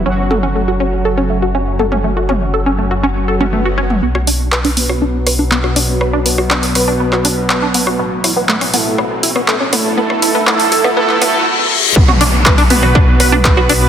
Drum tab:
HH |----------------|----------------|--o--oo---o---o-|--o--oo---o---o-|
CP |----------------|----------------|----x-------x---|----x----x--x---|
SD |----------------|----------------|-r--r--r--r--r--|r--r--r--r--r--r|
T2 |--o-----------oo|--o--------o---o|----------------|----------------|
BD |----------------|----------------|----------------|----------------|

HH |--o--oo---o---o-|--o--oo---o-----|--o--oo---o---o-|
CP |----x-------x---|----x----x------|----x-------x---|
SD |--r--r--r--r--r-|-r--r--r--r-----|-r--r--r--r--r--|
T2 |----------------|----------------|-o----o----o----|
BD |----------------|----------------|o---o---o---o---|